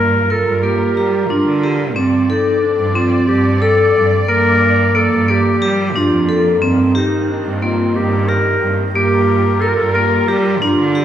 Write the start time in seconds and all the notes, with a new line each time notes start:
Already playing: G2 G3 A#3 F4 A#4
0.30 A4 A#4
0.47 G2
0.56 A4
0.63 A#3 G4
0.97 G3 G4
1.29 G2 D4 F4
1.47 D3
1.63 G4
1.95 G2 F3 C4 D5
2.29 D#4 A4
2.62 D4
2.79 G2
2.94 C4 F4
3.27 G2 G4
3.62 A4
3.96 G2
4.28 G2 F3 A#3 A#4
4.95 A#3 A4
5.12 G2
5.28 A#3 G4
5.62 G3 G4
5.95 G2 D4 F4
6.12 F2
6.29 A4
6.61 G2 D#3 C4
6.95 D#4 G4
7.29 D4
7.45 G2
7.62 A#3 F4
7.95 G2 G4
8.28 G4 A#4
8.62 G2
8.95 G2 G3 A#3 F4 G4 A#4
9.61 A4 A#4
9.68 A#4
9.75 G2 A4
9.93 A#3 A#4
10.28 G3 G4
10.61 G2 D4 F4
10.79 D3
10.95 G4